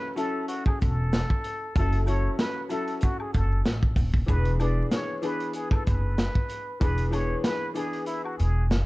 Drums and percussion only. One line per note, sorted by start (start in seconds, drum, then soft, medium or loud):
0.17 closed hi-hat medium
0.17 shaker medium
0.48 closed hi-hat medium
0.48 shaker medium
0.66 kick loud
0.66 high woodblock medium
0.81 kick loud
0.81 closed hi-hat medium
0.81 shaker soft
1.13 snare loud
1.13 closed hi-hat loud
1.13 shaker medium
1.30 kick medium
1.44 closed hi-hat medium
1.44 shaker soft
1.76 kick loud
1.76 closed hi-hat medium
1.76 shaker medium
1.93 closed hi-hat medium
2.07 closed hi-hat medium
2.07 high woodblock medium
2.07 shaker medium
2.39 snare loud
2.39 closed hi-hat loud
2.39 shaker medium
2.70 closed hi-hat medium
2.70 shaker medium
2.88 closed hi-hat soft
3.01 kick loud
3.01 closed hi-hat medium
3.01 shaker medium
3.20 high woodblock medium
3.34 kick loud
3.34 closed hi-hat medium
3.34 shaker medium
3.66 snare loud
3.66 closed hi-hat loud
3.66 shaker medium
3.83 kick medium
3.96 kick loud
3.96 open hi-hat medium
3.96 shaker soft
4.14 kick medium
4.28 kick loud
4.28 closed hi-hat medium
4.28 shaker medium
4.45 closed hi-hat medium
4.60 closed hi-hat medium
4.60 high woodblock medium
4.60 shaker medium
4.91 snare loud
4.91 closed hi-hat loud
4.91 shaker medium
5.23 closed hi-hat medium
5.23 shaker medium
5.40 closed hi-hat medium
5.53 closed hi-hat medium
5.53 shaker medium
5.71 kick loud
5.71 high woodblock medium
5.87 kick loud
5.87 closed hi-hat medium
5.87 shaker medium
6.18 snare loud
6.18 closed hi-hat loud
6.18 shaker medium
6.35 kick medium
6.49 closed hi-hat medium
6.49 shaker soft
6.81 kick loud
6.81 closed hi-hat medium
6.81 shaker medium
6.98 closed hi-hat medium
7.13 closed hi-hat medium
7.13 high woodblock medium
7.13 shaker medium
7.44 snare loud
7.44 closed hi-hat loud
7.44 shaker medium
7.75 closed hi-hat medium
7.75 shaker medium
7.93 closed hi-hat medium
8.06 closed hi-hat medium
8.06 shaker medium
8.25 high woodblock medium
8.39 closed hi-hat medium
8.39 shaker medium
8.71 snare loud
8.71 closed hi-hat loud
8.71 shaker medium